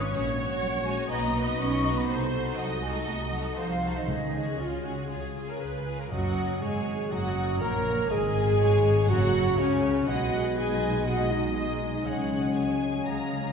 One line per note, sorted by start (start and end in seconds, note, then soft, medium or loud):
0.00 0.15 G#2 medium
0.00 0.15 G#3 medium
0.00 0.11 C#4 medium
0.00 0.36 C#4 medium
0.00 0.13 C#4 medium
0.00 0.13 F4 soft
0.00 0.15 F4 medium
0.00 0.12 B4 medium
0.00 0.12 C#5 medium
0.00 0.84 C#5 medium
0.00 0.13 C#6 medium
0.12 0.56 A#1 medium
0.12 1.12 A#2 medium
0.12 0.36 C#4 medium
0.12 0.36 F#4 medium
0.12 1.08 C#5 medium
0.12 0.36 C#5 medium
0.37 1.12 C#4 medium
0.37 0.84 C#4 medium
0.37 0.84 F#4 medium
0.37 0.84 C#5 medium
0.60 1.04 A#1 medium
0.60 0.69 F#3 medium
0.60 1.58 F#4 medium
0.60 0.83 F#5 medium
0.84 1.09 G#3 medium
0.84 1.09 C#4 medium
0.84 1.09 F#4 medium
0.84 1.09 C#5 medium
0.84 1.12 C#5 medium
0.84 1.09 G#5 medium
1.08 1.53 B1 medium
1.08 2.10 B2 medium
1.08 1.46 A#3 medium
1.08 1.33 D#4 medium
1.08 1.33 F#4 medium
1.08 1.34 B4 medium
1.08 2.06 D#5 medium
1.08 1.45 A#5 medium
1.34 2.32 D#4 soft
1.34 1.82 D#4 medium
1.34 1.82 F#4 medium
1.34 1.83 B4 medium
1.47 1.59 B3 medium
1.47 1.59 B5 medium
1.59 2.03 B1 medium
1.59 1.96 C#4 medium
1.59 2.57 F#4 medium
1.59 1.96 C#6 medium
1.83 2.07 D#4 medium
1.83 2.07 F#4 medium
1.83 2.08 B4 soft
1.96 2.08 B3 medium
1.96 2.09 B5 medium
2.08 2.52 C2 medium
2.08 4.10 C3 medium
2.08 2.32 D#4 soft
2.08 2.32 F#4 medium
2.08 2.32 A4 soft
2.08 2.57 C5 medium
2.33 3.31 D#4 soft
2.33 2.81 D#4 soft
2.33 2.81 F#4 medium
2.33 2.81 A4 soft
2.57 3.01 C2 medium
2.57 2.81 F#3 medium
2.57 3.56 F#4 soft
2.57 3.57 D#5 medium
2.57 2.64 F#5 medium
2.82 3.06 G#3 medium
2.82 3.31 D#4 medium
2.82 3.31 F#4 medium
2.82 3.31 A4 soft
2.82 3.81 A4 soft
2.82 2.88 G#5 medium
3.06 3.51 C2 medium
3.06 3.15 A3 medium
3.06 4.10 C4 soft
3.06 3.13 A5 medium
3.32 3.40 F#3 medium
3.32 3.81 D#4 soft
3.32 4.10 D#4 soft
3.32 3.81 F#4 soft
3.32 3.81 A4 soft
3.32 3.39 F#5 medium
3.56 4.01 C2 medium
3.56 3.94 F3 medium
3.56 4.57 F#4 soft
3.56 4.08 C5 medium
3.56 3.94 F5 medium
3.82 4.07 D#4 soft
3.82 4.07 F#4 soft
3.82 4.10 A4 soft
3.82 4.08 A4 soft
3.95 4.07 D#3 medium
3.95 4.07 D#5 medium
4.07 4.52 C#2 medium
4.07 4.80 C#3 medium
4.07 5.08 C#3 soft
4.07 4.58 D#3 medium
4.07 4.54 G#4 medium
4.07 4.58 D#5 medium
4.33 4.83 C#4 soft
4.33 5.33 C#4 soft
4.33 4.83 F#4 soft
4.33 4.83 G#4 soft
4.58 5.04 C#2 soft
4.58 5.60 C#3 soft
4.58 4.82 F4 medium
4.58 5.12 F#4 soft
4.58 5.60 C#5 medium
4.84 5.08 C#4 soft
4.84 5.09 F#4 soft
4.84 5.10 F#4 soft
4.84 5.84 G#4 soft
4.84 5.09 G#4 soft
5.09 5.54 C#2 soft
5.09 6.14 C#3 soft
5.09 5.33 C#4 soft
5.09 5.33 F4 soft
5.09 5.47 G#4 soft
5.09 5.34 G#4 soft
5.34 5.85 C#4 soft
5.34 6.60 C#4 soft
5.34 5.85 F4 soft
5.34 5.85 G#4 soft
5.48 5.61 A#4 medium
5.60 6.06 C#2 medium
5.60 6.14 F4 soft
5.60 5.99 B4 medium
5.85 6.12 C#4 soft
5.85 6.11 F4 soft
5.85 6.14 G#4 soft
5.85 6.11 G#4 soft
6.00 6.12 A#4 soft
6.11 6.58 F#1 medium
6.11 8.12 F#2 soft
6.11 6.83 F#2 medium
6.11 6.58 F#2 medium
6.11 6.58 F#3 medium
6.11 6.63 F#3 medium
6.11 6.58 F#4 medium
6.11 6.59 F#4 medium
6.11 6.63 D#5 soft
6.11 6.58 F#5 medium
6.28 7.26 A#4 soft
6.45 7.43 F#4 soft
6.61 7.10 G#1 medium
6.61 7.11 G#2 medium
6.61 7.11 G#3 medium
6.61 6.93 C#4 soft
6.61 7.10 G#4 medium
6.61 7.11 G#4 medium
6.61 7.10 G#4 medium
6.61 7.13 C#5 soft
6.61 7.10 G#5 medium
6.78 7.10 C#3 soft
6.95 7.59 C#4 soft
7.11 7.61 F#1 medium
7.11 7.61 F#2 medium
7.11 7.76 C#3 soft
7.11 7.62 F#3 medium
7.11 7.61 F#3 medium
7.11 7.61 F#4 medium
7.11 7.60 F#4 medium
7.11 7.62 D#5 soft
7.11 7.60 F#5 medium
7.11 7.61 F#5 medium
7.27 8.25 A#4 soft
7.44 8.42 F#4 soft
7.60 8.11 A#1 medium
7.60 8.11 A#2 medium
7.60 8.12 A#3 medium
7.60 8.11 A#3 medium
7.60 7.93 C#4 soft
7.60 8.10 A#4 medium
7.60 8.10 C#5 medium
7.60 8.09 A#5 medium
7.60 8.11 A#5 medium
7.77 8.13 C#3 soft
7.94 8.58 C#4 soft
8.10 9.07 G#1 medium
8.10 9.08 G#2 medium
8.10 9.08 A#2 soft
8.10 9.10 G#3 medium
8.10 9.07 G#4 medium
8.10 9.11 G#4 medium
8.10 9.08 G#4 loud
8.10 8.59 D#5 medium
8.10 9.07 G#5 medium
8.10 9.09 G#5 medium
8.27 9.24 A#4 soft
8.43 9.41 F#4 soft
8.59 8.91 C#4 soft
8.59 9.08 C#5 medium
8.76 9.73 A#3 soft
8.92 9.57 C#4 soft
9.08 9.59 F#1 medium
9.08 9.59 F#2 medium
9.08 10.10 A#2 medium
9.08 9.60 F#3 medium
9.08 9.58 F#3 medium
9.08 9.57 F#4 medium
9.08 9.60 F#4 medium
9.08 9.58 F#4 medium
9.08 10.06 C#5 medium
9.08 9.57 F#5 medium
9.08 9.59 F#5 medium
9.26 10.10 A#4 soft
9.57 10.08 C#2 medium
9.57 10.08 C#3 medium
9.57 10.06 C#4 medium
9.57 9.90 C#4 medium
9.57 10.07 C#4 medium
9.57 10.07 C#5 medium
9.57 10.08 C#5 medium
9.75 10.10 A#3 soft
9.91 10.10 C#4 medium
10.06 12.02 B1 medium
10.06 11.05 B2 medium
10.06 12.02 B2 medium
10.06 10.54 G#3 medium
10.06 13.52 G#3 medium
10.06 10.58 F#4 medium
10.06 10.54 G#4 medium
10.06 11.05 B4 medium
10.06 10.54 D#5 medium
10.06 12.07 D#5 medium
10.06 10.57 F#5 medium
10.24 11.22 G#4 soft
10.41 11.38 F#4 soft
10.56 11.06 G#3 medium
10.56 10.89 D#4 soft
10.56 11.06 G#4 medium
10.56 11.07 G#4 medium
10.56 11.06 D#5 medium
10.56 11.05 G#5 medium
10.56 11.06 G#5 medium
10.74 11.71 F#3 soft
10.90 11.55 D#4 soft
11.06 12.08 B2 soft
11.06 12.04 G#3 medium
11.06 11.31 F#4 medium
11.06 12.04 G#4 soft
11.06 11.55 D#5 medium
11.06 12.04 D#5 medium
11.06 11.32 F#5 medium
11.06 11.31 F#5 medium
11.23 12.21 G#4 soft
11.30 12.06 D#4 medium
11.30 12.04 D#5 medium
11.39 12.38 F#4 soft
11.56 11.87 D#4 soft
11.56 12.08 D#5 medium
11.72 13.08 F#3 soft
11.89 12.08 D#4 soft
12.05 13.04 C#2 medium
12.05 13.05 C#3 soft
12.05 13.05 G#3 medium
12.05 13.52 C#4 medium
12.05 13.05 G#4 soft
12.05 13.52 C#5 medium
12.05 13.08 F#5 soft
12.05 12.51 F#5 soft
12.05 13.52 G#5 medium
12.22 13.22 G#4 soft
12.39 13.08 F#4 soft
12.56 12.88 C#4 soft
12.56 13.03 G#5 medium
12.73 13.52 G#3 soft
12.89 13.52 C#4 soft
13.06 13.52 C#2 medium
13.06 13.52 C#3 soft
13.06 13.52 G#3 soft
13.06 13.52 G#4 soft
13.06 13.52 F5 medium
13.06 13.52 A#5 medium
13.23 13.52 G#4 soft
13.40 13.52 F4 soft